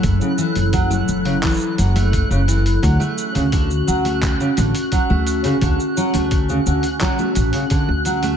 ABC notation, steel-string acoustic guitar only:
X:1
M:4/4
L:1/16
Q:1/4=86
K:D
V:1 name="Steel-string acoustic guitar" clef=bass
A, C, E, z F, A,2 C, E, z F, A,2 C, E, z | F, A,2 C, D, z F, A,2 C, D, z F, A,2 C, | D, z F, A,2 C, D, z F, A,2 C, D, z F, A, |]